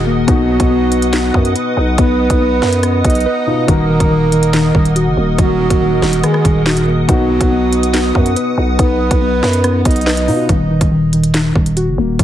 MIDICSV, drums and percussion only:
0, 0, Header, 1, 2, 480
1, 0, Start_track
1, 0, Key_signature, -6, "minor"
1, 0, Tempo, 425532
1, 315, Time_signature, 4, 2, 24, 8
1, 13806, End_track
2, 0, Start_track
2, 0, Title_t, "Drums"
2, 315, Note_on_c, 9, 36, 121
2, 315, Note_on_c, 9, 42, 82
2, 428, Note_off_c, 9, 36, 0
2, 428, Note_off_c, 9, 42, 0
2, 675, Note_on_c, 9, 36, 95
2, 675, Note_on_c, 9, 42, 77
2, 787, Note_off_c, 9, 36, 0
2, 788, Note_off_c, 9, 42, 0
2, 1034, Note_on_c, 9, 42, 80
2, 1147, Note_off_c, 9, 42, 0
2, 1155, Note_on_c, 9, 42, 80
2, 1267, Note_off_c, 9, 42, 0
2, 1274, Note_on_c, 9, 42, 85
2, 1275, Note_on_c, 9, 38, 113
2, 1288, Note_on_c, 9, 39, 90
2, 1386, Note_off_c, 9, 42, 0
2, 1388, Note_off_c, 9, 38, 0
2, 1400, Note_off_c, 9, 39, 0
2, 1515, Note_on_c, 9, 36, 95
2, 1628, Note_off_c, 9, 36, 0
2, 1635, Note_on_c, 9, 42, 53
2, 1748, Note_off_c, 9, 42, 0
2, 1754, Note_on_c, 9, 42, 82
2, 1867, Note_off_c, 9, 42, 0
2, 2234, Note_on_c, 9, 42, 81
2, 2235, Note_on_c, 9, 36, 119
2, 2347, Note_off_c, 9, 36, 0
2, 2347, Note_off_c, 9, 42, 0
2, 2594, Note_on_c, 9, 36, 97
2, 2594, Note_on_c, 9, 42, 77
2, 2707, Note_off_c, 9, 36, 0
2, 2707, Note_off_c, 9, 42, 0
2, 2955, Note_on_c, 9, 38, 65
2, 3067, Note_off_c, 9, 38, 0
2, 3074, Note_on_c, 9, 42, 82
2, 3187, Note_off_c, 9, 42, 0
2, 3193, Note_on_c, 9, 42, 84
2, 3195, Note_on_c, 9, 37, 94
2, 3306, Note_off_c, 9, 42, 0
2, 3308, Note_off_c, 9, 37, 0
2, 3435, Note_on_c, 9, 36, 94
2, 3435, Note_on_c, 9, 42, 80
2, 3495, Note_off_c, 9, 42, 0
2, 3495, Note_on_c, 9, 42, 70
2, 3548, Note_off_c, 9, 36, 0
2, 3555, Note_off_c, 9, 42, 0
2, 3555, Note_on_c, 9, 42, 58
2, 3615, Note_off_c, 9, 42, 0
2, 3615, Note_on_c, 9, 42, 47
2, 3728, Note_off_c, 9, 42, 0
2, 4155, Note_on_c, 9, 36, 118
2, 4155, Note_on_c, 9, 42, 81
2, 4267, Note_off_c, 9, 36, 0
2, 4268, Note_off_c, 9, 42, 0
2, 4515, Note_on_c, 9, 36, 93
2, 4515, Note_on_c, 9, 42, 79
2, 4627, Note_off_c, 9, 36, 0
2, 4628, Note_off_c, 9, 42, 0
2, 4875, Note_on_c, 9, 42, 77
2, 4988, Note_off_c, 9, 42, 0
2, 4995, Note_on_c, 9, 42, 81
2, 5107, Note_off_c, 9, 42, 0
2, 5114, Note_on_c, 9, 42, 86
2, 5116, Note_on_c, 9, 38, 112
2, 5128, Note_on_c, 9, 39, 88
2, 5227, Note_off_c, 9, 42, 0
2, 5229, Note_off_c, 9, 38, 0
2, 5241, Note_off_c, 9, 39, 0
2, 5355, Note_on_c, 9, 36, 96
2, 5468, Note_off_c, 9, 36, 0
2, 5476, Note_on_c, 9, 42, 52
2, 5588, Note_off_c, 9, 42, 0
2, 5595, Note_on_c, 9, 42, 86
2, 5708, Note_off_c, 9, 42, 0
2, 6074, Note_on_c, 9, 36, 115
2, 6074, Note_on_c, 9, 42, 83
2, 6187, Note_off_c, 9, 36, 0
2, 6187, Note_off_c, 9, 42, 0
2, 6434, Note_on_c, 9, 36, 95
2, 6434, Note_on_c, 9, 42, 77
2, 6547, Note_off_c, 9, 36, 0
2, 6547, Note_off_c, 9, 42, 0
2, 6795, Note_on_c, 9, 38, 69
2, 6907, Note_off_c, 9, 38, 0
2, 6914, Note_on_c, 9, 42, 84
2, 7027, Note_off_c, 9, 42, 0
2, 7033, Note_on_c, 9, 42, 85
2, 7035, Note_on_c, 9, 37, 91
2, 7146, Note_off_c, 9, 42, 0
2, 7148, Note_off_c, 9, 37, 0
2, 7154, Note_on_c, 9, 37, 80
2, 7266, Note_off_c, 9, 37, 0
2, 7274, Note_on_c, 9, 36, 99
2, 7275, Note_on_c, 9, 42, 77
2, 7387, Note_off_c, 9, 36, 0
2, 7388, Note_off_c, 9, 42, 0
2, 7514, Note_on_c, 9, 38, 114
2, 7526, Note_on_c, 9, 39, 89
2, 7627, Note_off_c, 9, 38, 0
2, 7634, Note_on_c, 9, 42, 81
2, 7639, Note_off_c, 9, 39, 0
2, 7746, Note_off_c, 9, 42, 0
2, 7994, Note_on_c, 9, 36, 116
2, 7994, Note_on_c, 9, 42, 81
2, 8107, Note_off_c, 9, 36, 0
2, 8107, Note_off_c, 9, 42, 0
2, 8354, Note_on_c, 9, 36, 93
2, 8354, Note_on_c, 9, 42, 76
2, 8467, Note_off_c, 9, 36, 0
2, 8467, Note_off_c, 9, 42, 0
2, 8714, Note_on_c, 9, 42, 77
2, 8827, Note_off_c, 9, 42, 0
2, 8834, Note_on_c, 9, 42, 80
2, 8947, Note_off_c, 9, 42, 0
2, 8953, Note_on_c, 9, 42, 82
2, 8955, Note_on_c, 9, 38, 116
2, 8967, Note_on_c, 9, 39, 92
2, 9066, Note_off_c, 9, 42, 0
2, 9067, Note_off_c, 9, 38, 0
2, 9080, Note_off_c, 9, 39, 0
2, 9195, Note_on_c, 9, 36, 98
2, 9307, Note_off_c, 9, 36, 0
2, 9315, Note_on_c, 9, 42, 52
2, 9428, Note_off_c, 9, 42, 0
2, 9435, Note_on_c, 9, 42, 86
2, 9548, Note_off_c, 9, 42, 0
2, 9915, Note_on_c, 9, 36, 120
2, 9915, Note_on_c, 9, 42, 83
2, 10027, Note_off_c, 9, 36, 0
2, 10027, Note_off_c, 9, 42, 0
2, 10275, Note_on_c, 9, 36, 93
2, 10275, Note_on_c, 9, 42, 76
2, 10387, Note_off_c, 9, 36, 0
2, 10388, Note_off_c, 9, 42, 0
2, 10635, Note_on_c, 9, 38, 67
2, 10748, Note_off_c, 9, 38, 0
2, 10754, Note_on_c, 9, 42, 79
2, 10867, Note_off_c, 9, 42, 0
2, 10874, Note_on_c, 9, 42, 85
2, 10876, Note_on_c, 9, 37, 93
2, 10987, Note_off_c, 9, 42, 0
2, 10988, Note_off_c, 9, 37, 0
2, 11114, Note_on_c, 9, 42, 79
2, 11115, Note_on_c, 9, 36, 94
2, 11175, Note_off_c, 9, 42, 0
2, 11175, Note_on_c, 9, 42, 68
2, 11228, Note_off_c, 9, 36, 0
2, 11234, Note_off_c, 9, 42, 0
2, 11234, Note_on_c, 9, 42, 58
2, 11294, Note_off_c, 9, 42, 0
2, 11294, Note_on_c, 9, 42, 47
2, 11355, Note_on_c, 9, 38, 113
2, 11367, Note_on_c, 9, 39, 87
2, 11407, Note_off_c, 9, 42, 0
2, 11468, Note_off_c, 9, 38, 0
2, 11475, Note_on_c, 9, 42, 82
2, 11480, Note_off_c, 9, 39, 0
2, 11587, Note_off_c, 9, 42, 0
2, 11596, Note_on_c, 9, 46, 53
2, 11709, Note_off_c, 9, 46, 0
2, 11834, Note_on_c, 9, 36, 113
2, 11835, Note_on_c, 9, 42, 78
2, 11947, Note_off_c, 9, 36, 0
2, 11947, Note_off_c, 9, 42, 0
2, 12194, Note_on_c, 9, 36, 93
2, 12194, Note_on_c, 9, 42, 74
2, 12307, Note_off_c, 9, 36, 0
2, 12307, Note_off_c, 9, 42, 0
2, 12554, Note_on_c, 9, 42, 77
2, 12667, Note_off_c, 9, 42, 0
2, 12673, Note_on_c, 9, 42, 76
2, 12786, Note_off_c, 9, 42, 0
2, 12792, Note_on_c, 9, 42, 83
2, 12794, Note_on_c, 9, 38, 111
2, 12806, Note_on_c, 9, 39, 86
2, 12905, Note_off_c, 9, 42, 0
2, 12906, Note_off_c, 9, 38, 0
2, 12919, Note_off_c, 9, 39, 0
2, 13034, Note_on_c, 9, 36, 90
2, 13147, Note_off_c, 9, 36, 0
2, 13154, Note_on_c, 9, 42, 52
2, 13267, Note_off_c, 9, 42, 0
2, 13274, Note_on_c, 9, 42, 85
2, 13387, Note_off_c, 9, 42, 0
2, 13754, Note_on_c, 9, 36, 112
2, 13754, Note_on_c, 9, 42, 81
2, 13806, Note_off_c, 9, 36, 0
2, 13806, Note_off_c, 9, 42, 0
2, 13806, End_track
0, 0, End_of_file